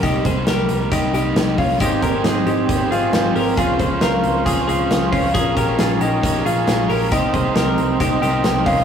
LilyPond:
<<
  \new Staff \with { instrumentName = "Transistor combo organ" } { \time 4/4 \key c \phrygian \tempo 4 = 136 r1 | <g' aes' c''>1 | <des' f' c''>1 | <des' aes' bes'>1 |
<c' ees' bes'>1 | }
  \new Staff \with { instrumentName = "Clean electric guitar" } { \time 4/4 \key c \phrygian <ees' g'>8 <aes' c''>8 <g' bes'>4 <ees' g'>8 <ees' g'>4 <des' f'>8 | <ees' g'>8 <g' bes'>8 <ees' aes'>8 <ees' g'>4 <f' aes'>4 <g' bes'>8 | <f' aes'>8 <aes' c''>8 <f' bes'>4 <f' aes'>8 <f' aes'>4 <des' f'>8 | <f' aes'>8 <g' bes'>8 <f' aes'>8 <ees' g'>4 <f' aes'>4 <g' bes'>8 |
<ees' g'>8 <aes' c''>8 <g' bes'>4 <ees' g'>8 <ees' g'>4 <des' f'>8 | }
  \new Staff \with { instrumentName = "Overdriven electric guitar" } { \time 4/4 \key c \phrygian <c g bes ees'>8. <g bes ees'>4~ <g bes ees'>16 <c g bes ees'>8 <c g bes ees'>8. <g bes ees'>8. | <ees c' ees'>8. <c' ees'>4~ <c' ees'>16 <aes, ees g c' ees'>8 <aes, ees c' ees'>8. <c' ees'>8. | <f aes c' f'>8. <aes c' f'>4~ <aes c' f'>16 <des f aes c' f'>8 <des f aes c' f'>8. <aes c' f'>8. | <f aes des' f'>8. <aes des' f'>4~ <aes des' f'>16 <bes, f aes des' f'>8 <bes, f aes des' f'>8. <aes des' f'>8. |
<ees bes c' g'>8. <bes c' g'>4~ <bes c' g'>16 <c ees bes c' g'>8 <c ees bes c' g'>8. <bes c' g'>8. | }
  \new Staff \with { instrumentName = "Picked electric bass" } { \clef bass \time 4/4 \key c \phrygian c,8 c,8 c,8 c,8 c,8 c,8 c,8 c,8 | aes,,8 aes,,8 aes,,8 aes,,8 aes,,8 aes,,8 aes,,8 aes,,8 | des,8 des,8 des,8 des,8 des,8 des,8 des,8 des,8 | bes,,8 bes,,8 bes,,8 bes,,8 bes,,8 bes,,8 bes,,8 bes,,8 |
c,8 c,8 c,8 c,8 c,8 c,8 c,8 c,8 | }
  \new DrumStaff \with { instrumentName = "Drums" } \drummode { \time 4/4 <hh bd>8 <hh bd>8 <hh sn>8 hh8 <hh bd>8 <hh sn>8 <hh sn>8 <hho bd>8 | <hh bd>8 <hh bd>8 <hh sn>8 hh8 <hh bd>8 hh8 <hh sn>8 hho8 | <hh bd>8 <hh bd>8 <hh sn>8 hh8 <hh bd>8 hh8 <hh sn>8 <hho bd>8 | <hh bd>8 <hh bd>8 <hh sn>8 hh8 <hh bd>8 hh8 <hh sn>8 hho8 |
<hh bd>8 <hh bd>8 <hh sn>8 hh8 <hh bd>8 <hh sn>8 <hh sn>8 <hho bd>8 | }
>>